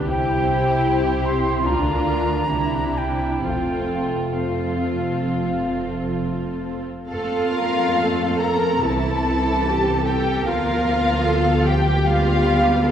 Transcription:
0.07 1.62 C2 medium
0.07 1.62 C3 soft
0.07 1.63 C4 medium
0.07 1.65 E4 soft
0.07 1.63 E4 medium
0.07 1.62 G4 medium
0.07 1.65 C5 medium
0.07 1.27 G5 medium
1.25 1.67 C6 medium
1.63 2.51 D2 medium
1.63 2.50 D3 medium
1.63 3.27 D4 soft
1.63 2.50 D4 medium
1.63 2.51 F4 medium
1.63 2.52 F4 soft
1.63 2.50 A#4 soft
1.63 2.99 A#5 medium
2.49 3.42 C2 soft
2.49 3.41 C3 soft
2.49 3.42 D4 soft
2.49 3.41 E4 soft
2.49 3.27 E4 soft
2.49 3.42 G4 soft
2.98 3.44 G5 medium
3.43 6.87 F1 soft
3.43 6.87 F2 soft
3.43 6.75 A3 soft
3.43 4.33 C4 soft
3.43 6.70 F4 soft
3.43 4.33 F4 soft
3.43 4.33 A4 soft
3.43 4.35 G5 medium
4.33 6.83 C4 soft
4.33 6.83 F4 soft
4.33 6.83 A4 soft
4.33 6.16 F5 soft
7.09 8.80 F2 medium
7.09 8.80 A3 medium
7.09 10.42 C4 medium
7.09 8.37 F4 medium
7.09 7.50 A4 medium
7.09 8.37 F5 medium
7.53 7.96 A#4 medium
7.97 8.84 A4 medium
8.40 8.84 A#4 medium
8.40 8.83 A#5 medium
8.82 10.43 C2 medium
8.82 10.42 E3 medium
8.82 9.65 E4 medium
8.82 10.06 A4 medium
8.82 10.06 A5 medium
9.66 10.06 G4 medium
10.06 10.46 G4 medium
10.06 10.45 A4 medium
10.06 10.47 G5 medium
10.44 12.91 D2 medium
10.44 12.03 F3 medium
10.44 12.03 A#3 medium
10.44 11.68 F4 medium
10.44 11.26 A#4 medium
10.44 11.65 F5 medium
11.27 11.67 A4 medium
11.67 12.87 G4 medium
11.67 12.07 G4 medium
11.67 12.08 G5 medium
12.06 12.91 G3 medium
12.06 12.91 B3 medium
12.06 12.91 F4 medium
12.06 12.91 F5 medium
12.88 12.91 A4 medium

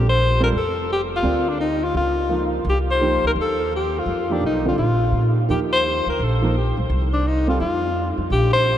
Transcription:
0.00 0.50 A#1 medium
0.09 0.40 C5 medium
0.40 0.52 G3 medium
0.40 0.52 C4 medium
0.40 0.52 F4 medium
0.40 0.52 A4 medium
0.40 0.49 A#4 medium
0.52 1.20 F1 medium
0.57 0.88 A4 medium
0.93 1.02 G4 medium
1.16 1.50 F4 medium
1.23 1.90 D2 medium
1.23 1.44 C4 medium
1.23 1.44 F4 medium
1.23 1.44 A#4 medium
1.23 1.44 D5 medium
1.49 1.60 D4 medium
1.61 1.86 D#4 medium
1.84 1.96 F4 medium
1.95 2.62 C#2 medium
1.95 2.50 F4 medium
2.29 2.65 F3 medium
2.29 2.65 A#3 soft
2.29 2.65 D#4 soft
2.29 2.65 F4 medium
2.65 3.19 C2 medium
2.69 2.79 G4 medium
2.91 3.22 C5 loud
3.00 3.54 F3 soft
3.00 3.54 A#3 soft
3.00 3.54 D#4 medium
3.00 3.55 G4 medium
3.23 3.35 C#2 medium
3.27 3.32 A#4 medium
3.35 4.03 D#2 medium
3.41 3.72 A4 medium
3.76 4.00 G4 medium
3.99 4.34 F4 medium
4.06 4.39 F2 medium
4.29 4.62 F3 medium
4.29 4.63 A#3 soft
4.29 4.44 D4 medium
4.29 4.63 D#4 medium
4.29 4.63 G4 medium
4.41 4.74 B1 medium
4.46 4.65 D#4 medium
4.64 4.76 D3 medium
4.64 4.76 G3 medium
4.64 4.77 C4 medium
4.64 4.77 F4 medium
4.69 4.78 F4 medium
4.78 5.11 A#1 medium
4.78 5.32 F4 medium
5.12 5.45 A#2 medium
5.49 6.02 D#2 medium
5.49 6.02 F3 soft
5.49 6.02 A#3 soft
5.49 6.02 D#4 soft
5.49 6.02 G4 medium
5.49 5.60 G4 medium
5.73 6.05 C5 medium
6.06 6.18 D2 medium
6.06 6.25 A#4 medium
6.19 6.73 A#1 medium
6.23 6.57 A4 medium
6.42 6.53 F3 medium
6.42 6.53 A#3 medium
6.42 6.54 D#4 medium
6.42 6.54 A#4 medium
6.58 6.77 G4 medium
6.77 6.89 B1 medium
6.90 7.57 C2 medium
7.13 7.29 D4 medium
7.27 7.49 D#4 medium
7.47 7.59 G3 medium
7.47 7.59 C4 medium
7.47 7.59 F4 medium
7.47 7.60 F4 medium
7.47 7.60 A4 medium
7.60 8.14 F2 medium
7.60 8.14 F4 medium
8.17 8.30 F2 medium
8.30 8.78 A#1 medium
8.30 8.52 G4 medium
8.53 8.78 C5 loud

